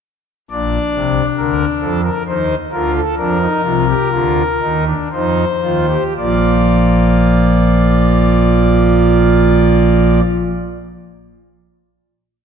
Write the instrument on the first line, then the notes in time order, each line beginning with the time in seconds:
pipe organ
0.51 A#1 A#2 D4 D5
0.94 C2 C3
1.38 D2 D3 A#4
1.81 F2 F3 A4
2.04 A#4
2.27 D#2 D#3 D#4 C5
2.72 D2 D3 F4 A#4
2.95 A4
3.17 F2 F3 D4 A#4
3.41 D#4
3.64 C2 C3 F4
3.89 G4
4.12 D2 D3 F4
4.62 D#2 D#3 D#4
4.86 D4
5.12 F2 F3 D#4 C5
5.63 D#2 D#3 F4
5.90 G4
6.17 A#1 A#2 F3 A#3 F4 D5